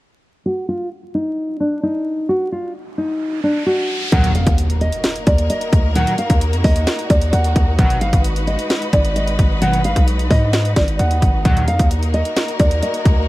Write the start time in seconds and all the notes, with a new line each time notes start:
0.46 F#4
0.69 F4
1.15 D#4
1.60 D4
1.83 D#4
2.29 F#4, riser
2.52 F4
2.98 D#4
3.44 D4
3.66 F#4
4.12 D#2 A#2 D#3 F#3 A#3 D#4 F#4 A#4 F#5, kick, closed hi-hat, impact
4.24 closed hi-hat
4.35 F2 F5, closed hi-hat
4.47 D#2, kick, closed hi-hat
4.58 closed hi-hat
4.70 closed hi-hat
4.81 D#5, closed hi-hat
4.92 closed hi-hat
5.04 snare, closed hi-hat
5.16 closed hi-hat
5.27 D#2 D5, kick, closed hi-hat
5.38 closed hi-hat
5.50 D#5, closed hi-hat
5.61 closed hi-hat
5.73 D2, kick, closed hi-hat
5.95 A#2 D#3 F#3 F#5, closed hi-hat
6.07 closed hi-hat
6.18 F5, closed hi-hat
6.30 D#2, kick, closed hi-hat
6.41 closed hi-hat
6.53 F2, closed hi-hat
6.64 D#2 D#5, kick, closed hi-hat, open hi-hat
6.76 closed hi-hat
6.87 snare, closed hi-hat
6.99 closed hi-hat
7.10 D#2 D5, kick, closed hi-hat
7.22 closed hi-hat
7.33 D#2 F#5, closed hi-hat
7.44 closed hi-hat
7.56 D#2, kick, closed hi-hat
7.79 G#1 B2 D#3 F#3 G#3 B4 F#5, kick, closed hi-hat
7.90 closed hi-hat
8.01 F5, closed hi-hat
8.13 G#1, kick, closed hi-hat
8.24 closed hi-hat
8.36 closed hi-hat
8.47 D#5, closed hi-hat
8.59 closed hi-hat
8.70 snare, closed hi-hat
8.82 closed hi-hat
8.93 G#1 D5, kick, closed hi-hat
9.05 closed hi-hat
9.16 D#5, closed hi-hat
9.28 closed hi-hat
9.39 G#1, kick, closed hi-hat
9.62 B2 D#3 F#3 F#5, closed hi-hat
9.73 closed hi-hat
9.84 F5, closed hi-hat
9.96 B1, kick, closed hi-hat
10.08 closed hi-hat
10.19 closed hi-hat
10.30 G#2 D#5, kick, open hi-hat
10.53 snare, closed hi-hat
10.65 closed hi-hat
10.76 G#1 D5, kick, snare, closed hi-hat
10.88 closed hi-hat
10.99 D#2 F#5, closed hi-hat
11.11 closed hi-hat
11.22 G#1, kick, closed hi-hat
11.45 D#2 A#2 D#3 F#3 A#3 F#4 A#4 F#5, kick, closed hi-hat
11.57 closed hi-hat
11.68 F2 F5, closed hi-hat
11.79 D#2, kick, closed hi-hat
11.91 closed hi-hat
12.03 closed hi-hat
12.14 D#5, closed hi-hat
12.25 closed hi-hat
12.36 snare, closed hi-hat
12.48 closed hi-hat
12.60 D#2 D5, kick, closed hi-hat
12.71 closed hi-hat
12.83 D#5, closed hi-hat
12.94 closed hi-hat
13.05 D2, kick, closed hi-hat